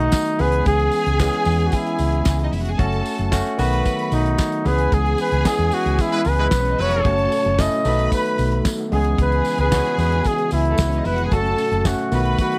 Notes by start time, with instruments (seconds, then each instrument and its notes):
Already playing: tine electric piano D#3 F#3 A3 B3 F#4, flugelhorn D#4, string section F#4 F#5
0.12 kick, snare, clap, tambourine
0.25 closed hi-hat
0.39 fingered electric bass C#2, tine electric piano E3 G#3 B3 C#4 G#4, string section G#4 G#5, flugelhorn B4, open hi-hat, tambourine
0.52 closed hi-hat
0.65 fingered electric bass C#2, flugelhorn G#4, kick, closed hi-hat, tambourine
0.80 closed hi-hat
0.92 open hi-hat, tambourine
1.06 fingered electric bass C#2, closed hi-hat
1.19 tine electric piano E3 G#3 B3 C#4 G#4, flugelhorn G#4, kick, snare, clap, tambourine
1.33 snare, closed hi-hat
1.45 fingered electric bass E2, open hi-hat, tambourine
1.60 closed hi-hat
1.67 flugelhorn F#4
1.72 flugelhorn E4, kick, closed hi-hat, tambourine
1.86 closed hi-hat
1.99 fingered electric bass C#2, open hi-hat, tambourine
2.12 closed hi-hat
2.25 fingered electric bass C#2, kick, snare, clap, tambourine
2.39 closed hi-hat
2.43 string section D#4 D#5
2.52 fingered electric bass F1, string section E4 E5, open hi-hat, tambourine
2.61 string section F#4 F#5, closed hi-hat
2.70 string section G#4 G#5
2.78 fingered electric bass F#1, tine electric piano A3 C#4 F#4, string section A4 A5, kick, closed hi-hat
2.92 closed hi-hat
3.06 open hi-hat, tambourine
3.18 fingered electric bass F#1, closed hi-hat
3.32 tine electric piano A3 C#4 F#4, kick, snare, clap, tambourine
3.45 snare, closed hi-hat
3.58 fingered electric bass B1, tine electric piano D#3 F#3 A3 B3 F#4, string section B4 B5, open hi-hat, tambourine
3.73 closed hi-hat
3.85 kick, closed hi-hat, tambourine
3.99 closed hi-hat
4.12 fingered electric bass B1, flugelhorn D#4, open hi-hat, tambourine
4.26 closed hi-hat
4.38 kick, snare, clap, tambourine
4.52 closed hi-hat
4.64 fingered electric bass C#2, tine electric piano E3 G#3 B3 C#4 G#4, string section G#4 G#5, flugelhorn B4, open hi-hat, tambourine
4.78 closed hi-hat
4.92 fingered electric bass C#2, flugelhorn G#4, kick, closed hi-hat, tambourine
5.06 closed hi-hat
5.18 flugelhorn B4, open hi-hat, tambourine
5.32 fingered electric bass C#2, closed hi-hat
5.45 tine electric piano E3 G#3 B3 C#4 G#4, flugelhorn G#4, kick, snare, clap, tambourine
5.59 fingered electric bass E2, closed hi-hat
5.71 flugelhorn F#4, open hi-hat, tambourine
5.86 fingered electric bass C#2, closed hi-hat
5.98 flugelhorn E4, kick, closed hi-hat, tambourine
6.12 horn section G#3 E4 B4, closed hi-hat
6.25 fingered electric bass C#2, flugelhorn B4, open hi-hat, tambourine
6.38 horn section G#3 E4 B4, closed hi-hat
6.51 fingered electric bass B1, string section B3 B4, kick, snare, clap, tambourine
6.60 string section C#4 C#5
6.65 closed hi-hat
6.69 string section D#4 D#5
6.78 fingered electric bass F1, horn section F#3 C#4 B4, string section E4 E5, flugelhorn C#5, open hi-hat
6.87 string section F#4 F#5, closed hi-hat
6.96 string section G#4 G#5
7.04 fingered electric bass F#1, tonewheel organ A2 C#3 F#3 C#4 F#4, tine electric piano A3 C#4 F#4, string section A4 A5, kick, closed hi-hat
7.18 closed hi-hat
7.32 open hi-hat, tambourine
7.45 fingered electric bass F#1, closed hi-hat
7.58 tine electric piano A3 C#4 E4, flugelhorn D#5, kick, snare, clap, tambourine
7.72 closed hi-hat
7.84 fingered electric bass B1, tonewheel organ D#3 A3 B3 F#4, tine electric piano F#3 A3 B3 D#4 A4, string section B4 B5, open hi-hat, tambourine
7.99 closed hi-hat
8.12 flugelhorn B4, kick, closed hi-hat, tambourine
8.25 closed hi-hat
8.38 fingered electric bass B1, open hi-hat, tambourine
8.52 closed hi-hat
8.65 kick, snare, clap, tambourine
8.78 closed hi-hat
8.91 fingered electric bass C#2, tonewheel organ C#3 E3 G#3 E4, tine electric piano E3 G#3 B3 C#4 G#4, string section G#4 G#5, flugelhorn G#4, open hi-hat
9.04 closed hi-hat
9.18 fingered electric bass C#2, flugelhorn B4, kick, closed hi-hat, tambourine
9.32 closed hi-hat
9.45 open hi-hat, tambourine
9.58 fingered electric bass C#2, flugelhorn B4, closed hi-hat
9.71 tine electric piano E3 G#3 B3 C#4 F#4, kick, snare, clap, tambourine
9.85 snare, closed hi-hat
9.98 fingered electric bass E2, flugelhorn B4, open hi-hat, tambourine
10.12 closed hi-hat
10.24 flugelhorn G#4, kick, closed hi-hat, tambourine
10.38 closed hi-hat
10.51 fingered electric bass C#2, flugelhorn E4, open hi-hat, tambourine
10.65 closed hi-hat
10.70 string section A3 A4
10.78 fingered electric bass C#2, string section B3 B4, kick, snare, clap, tambourine
10.88 string section C#4 C#5
10.92 closed hi-hat
10.96 string section D#4 D#5
11.05 fingered electric bass F1, string section E4 E5, flugelhorn B4, open hi-hat, tambourine
11.15 string section F#4 F#5, closed hi-hat
11.24 string section G#4 G#5, flugelhorn B4
11.31 fingered electric bass F#1, tonewheel organ A2 C#3 F#3 C#4 F#4, tine electric piano A3 C#4 F#4, string section A4 A5, flugelhorn A4, kick, closed hi-hat, tambourine
11.45 closed hi-hat
11.58 open hi-hat, tambourine
11.71 fingered electric bass F#1, closed hi-hat
11.85 tine electric piano A3 C#4 F#4, flugelhorn F#4, kick, snare, clap, tambourine
11.98 closed hi-hat
12.11 fingered electric bass B1, tonewheel organ D#3 A3 B3, tine electric piano D#3 F#3 A3 B3 F4, string section B4 B5, open hi-hat, tambourine
12.20 tine electric piano F#4
12.25 closed hi-hat
12.38 flugelhorn F#4, kick, closed hi-hat, tambourine
12.52 closed hi-hat